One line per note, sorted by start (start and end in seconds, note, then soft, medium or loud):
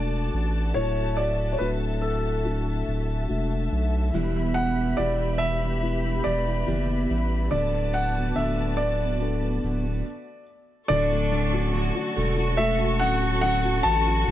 0.00 0.30 E1 medium
0.00 0.71 D3 medium
0.00 1.59 A3 soft
0.00 1.60 D4 soft
0.00 1.60 F#4 soft
0.00 4.09 F#4 medium
0.00 4.09 A4 medium
0.00 0.72 D5 medium
0.00 0.78 D5 medium
0.00 4.09 A5 medium
0.34 0.73 A1 medium
0.74 1.56 D1 medium
0.74 4.09 A2 medium
0.74 1.18 C#5 medium
0.74 7.48 E5 medium
1.17 1.53 D5 medium
1.52 1.60 C#5 medium
1.58 2.83 D1 medium
1.58 2.42 A3 soft
1.58 2.42 D4 soft
1.58 2.42 F#4 soft
1.58 1.68 B4 medium
2.01 3.67 A4 medium
2.44 3.26 A3 soft
2.44 3.26 D4 soft
2.44 3.27 F#4 soft
2.88 3.26 D1 medium
3.28 3.69 E1 medium
3.28 4.10 A3 soft
3.28 4.10 D4 soft
3.28 4.11 F#4 soft
3.72 4.11 B1 medium
4.13 4.94 E1 medium
4.13 4.77 E2 medium
4.13 4.77 B2 medium
4.13 7.47 E3 medium
4.13 4.77 E3 medium
4.13 4.77 G3 medium
4.13 4.76 B3 medium
4.13 4.75 E4 medium
4.13 7.49 G4 medium
4.13 10.01 B4 medium
4.13 7.49 B5 medium
4.54 4.99 F#5 medium
4.76 4.97 E3 soft
4.76 4.97 G3 soft
4.76 4.98 B3 soft
4.76 4.98 E4 soft
4.97 6.21 E1 medium
4.97 5.40 E2 medium
4.97 5.40 B2 medium
4.97 5.38 E3 medium
4.97 5.39 G3 medium
4.97 5.79 B3 soft
4.97 5.40 B3 medium
4.97 5.80 E4 soft
4.97 5.41 E4 medium
4.97 5.80 G4 soft
4.97 5.41 D5 medium
5.38 5.61 E3 soft
5.38 5.62 G3 soft
5.38 5.61 B3 medium
5.38 5.60 E4 medium
5.38 6.26 E5 medium
5.61 6.05 E3 soft
5.61 6.04 G3 soft
5.61 6.03 B3 soft
5.61 6.03 E4 soft
5.82 6.64 B3 soft
5.82 6.65 E4 soft
5.82 6.65 G4 soft
6.04 6.23 E3 soft
6.04 6.24 G3 soft
6.04 6.25 B3 soft
6.04 6.25 E4 soft
6.24 6.65 E1 medium
6.24 6.46 E3 medium
6.24 6.46 G3 medium
6.24 6.45 B3 medium
6.24 6.44 E4 medium
6.24 7.49 D5 medium
6.46 6.66 E3 soft
6.46 6.67 G3 soft
6.46 6.67 B3 soft
6.46 6.67 E4 soft
6.66 7.07 F#1 medium
6.66 6.88 E2 medium
6.66 6.88 B2 medium
6.66 6.88 E3 medium
6.66 6.89 G3 medium
6.66 7.49 B3 soft
6.66 6.88 B3 medium
6.66 7.49 E4 soft
6.66 6.87 E4 medium
6.66 7.49 G4 soft
6.88 7.08 E3 soft
6.88 7.08 G3 soft
6.88 7.09 B3 soft
6.88 7.09 E4 soft
7.09 7.49 A1 medium
7.09 7.51 E3 soft
7.09 7.52 G3 medium
7.09 7.51 B3 medium
7.09 7.52 E4 medium
7.51 8.33 D1 loud
7.51 10.01 D3 medium
7.51 8.15 D3 medium
7.51 8.15 A3 medium
7.51 8.14 B3 medium
7.51 10.02 F#4 medium
7.51 8.14 F#4 medium
7.51 7.95 D5 medium
7.51 10.02 D5 medium
7.51 10.02 A5 medium
7.94 8.37 F#5 medium
8.15 8.35 A3 soft
8.15 8.36 B3 soft
8.15 8.36 F#4 soft
8.35 9.59 D1 medium
8.35 8.77 D3 medium
8.35 8.78 A3 medium
8.35 9.17 B3 soft
8.35 8.79 B3 medium
8.35 9.18 D4 soft
8.35 8.79 F#4 medium
8.35 9.18 A4 soft
8.35 8.79 E5 medium
8.77 8.99 D3 soft
8.77 9.00 A3 medium
8.77 9.00 B3 soft
8.77 8.98 F#4 soft
8.77 10.43 D5 medium
8.99 9.43 A3 soft
8.99 9.42 B3 soft
8.99 9.41 F#4 soft
9.20 10.02 B3 soft
9.20 10.03 D4 soft
9.20 10.03 A4 soft
9.42 9.63 A3 soft
9.42 9.63 B3 soft
9.42 9.63 F#4 soft
9.63 10.02 D1 medium
9.63 9.84 D3 soft
9.63 9.84 A3 soft
9.63 9.84 B3 medium
9.63 9.82 F#4 medium
9.84 10.06 A3 soft
9.84 10.06 B3 soft
9.84 10.05 F#4 medium
10.88 11.91 D1 loud
10.88 11.30 D3 medium
10.88 14.24 D3 medium
10.88 14.31 F#3 medium
10.88 11.31 A3 medium
10.88 11.70 D4 loud
10.88 11.33 F#4 medium
10.88 14.31 A4 medium
10.88 12.63 D5 loud
10.88 14.31 A5 medium
10.88 14.31 C#6 medium
11.11 12.56 A3 soft
11.32 11.53 D3 medium
11.32 11.53 A3 medium
11.32 11.52 C#4 medium
11.32 12.97 D4 medium
11.32 11.51 F#4 medium
11.53 11.73 A3 soft
11.53 11.73 C#4 medium
11.53 11.73 F#4 medium
11.53 11.94 F#4 medium
11.73 11.95 D3 medium
11.73 11.95 A3 medium
11.73 11.94 C#4 medium
11.73 14.31 F#4 loud
11.73 11.93 F#4 medium
11.95 12.15 A3 soft
11.95 12.15 C#4 soft
11.95 12.16 F#4 medium
11.95 12.36 F#4 medium
12.15 13.03 E1 medium
12.15 12.37 D3 medium
12.15 12.37 A3 medium
12.15 12.37 C#4 medium
12.15 12.35 F#4 medium
12.15 12.78 A4 medium
12.37 13.00 A3 soft
12.37 13.00 C#4 soft
12.37 13.00 F#4 medium
12.37 13.21 F#4 medium
12.57 14.31 A3 medium
12.57 13.01 E5 medium
12.99 13.81 D1 loud
12.99 13.21 D3 medium
12.99 13.22 A3 medium
12.99 13.42 C#4 medium
12.99 13.21 C#4 medium
12.99 13.20 F#4 medium
12.99 13.40 F#5 medium
13.22 13.41 A3 soft
13.22 13.42 C#4 soft
13.22 13.63 F#4 medium
13.41 13.64 D3 medium
13.41 13.64 A3 medium
13.41 13.63 C#4 medium
13.41 14.31 C#4 medium
13.41 13.62 F#4 medium
13.41 13.86 F#5 medium
13.63 13.84 A3 soft
13.63 13.85 C#4 medium
13.63 13.85 F#4 medium
13.63 14.04 F#4 medium
13.83 14.24 A1 medium
13.83 14.26 D3 medium
13.83 14.27 A3 medium
13.83 14.27 C#4 medium
13.83 14.28 F#4 medium
13.83 14.31 A4 medium
13.83 14.31 A5 loud
14.06 14.31 F#4 medium
14.27 14.31 D1 loud
14.27 14.31 A2 medium
14.27 14.31 D3 medium
14.27 14.31 A3 medium